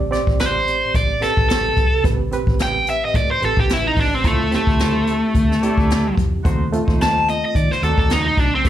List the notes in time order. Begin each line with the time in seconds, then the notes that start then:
Already playing: A1 D5
0.11 C4 G4 D5, snare, closed hi-hat
0.27 A1, kick
0.39 C5, snare, closed hi-hat
0.67 closed hi-hat
0.94 A1 D5, kick, closed hi-hat
1.20 C4 G4 A4 B4, muted fingered electric bass stroke, snare, closed hi-hat
1.37 A1, kick
1.49 A4, snare, closed hi-hat
1.77 C2, kick, closed hi-hat
2.04 A1 C4 G4 B4, kick, closed hi-hat
2.32 C4 G4 B4, closed hi-hat
2.47 A1, kick
2.59 G5, snare, closed hi-hat
2.87 E5, closed hi-hat
3.05 D#5
3.14 A2 D5, kick, closed hi-hat
3.31 C5
3.40 A1 C4 G4 B4, closed hi-hat
3.45 A4
3.57 A1 G4, kick
3.69 E4, snare, closed hi-hat
3.87 D#4
3.97 A1 D4, kick, open hi-hat
4.14 C4
4.23 D2 A3 C4 E4 F4 C5, kick, closed hi-hat
4.52 A3 C4 E4 G4, snare, closed hi-hat
4.66 D2 E4 C5, kick
4.79 snare, closed hi-hat
5.07 closed hi-hat
5.35 D2, kick, closed hi-hat
5.52 snare
5.62 C4 E4 G4 D5, muted fingered electric bass stroke, closed hi-hat
5.78 D2, kick
5.90 snare, closed hi-hat
6.18 F2, kick, closed hi-hat
6.42 D#2 A3 C4 D#4 F#4 C5, kick, closed hi-hat
6.72 A3 C4 F4, closed hi-hat
6.85 D#2 D#4 C5, kick
6.89 snare
7.01 A5, snare, closed hi-hat
7.28 D#5, closed hi-hat
7.45 D#5
7.55 D#3 D5, kick, closed hi-hat
7.71 C5, snare
7.81 D#2 A3 C4 D#4 F#4 A4 D5, closed hi-hat
7.98 D#2 A4, kick
8.10 D#4, snare, closed hi-hat
8.28 D#4
8.37 B1 D4, kick, closed hi-hat
8.55 C4
8.63 A1 B3 C4 G4 B4, kick, closed hi-hat